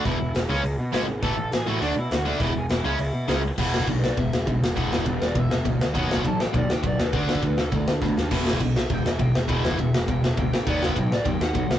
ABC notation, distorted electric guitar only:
X:1
M:4/4
L:1/8
Q:1/4=203
K:Bdor
V:1 name="Distorted electric guitar" clef=bass
[E,,B,,E,] z2 [C,G,C] z2 [C,G,C] z | [A,,E,A,] z2 [A,,E,A,] [D,A,D] z2 [D,A,D] | [E,,B,,E,] z2 [C,G,C] z2 [C,G,C] z | [E,,B,,E,]2 [E,,B,,] z [E,,B,,] z [E,,B,,] z |
[E,,B,,E,]2 [E,,B,,] z [E,,B,,] z [E,,B,,] z | [B,,F,B,]2 [B,,F,] z [B,,F,] z [B,,F,] z | [D,A,D]2 [D,A,] z [D,A,] z [D,A,] z | [E,,B,,E,]2 [E,,B,,] z [E,,B,,] z [E,,B,,] z |
[E,,B,,E,]2 [E,,B,,] z [E,,B,,] z [E,,B,,] z | [B,,F,B,]2 [B,,F,] z [B,,F,] z [B,,F,] z |]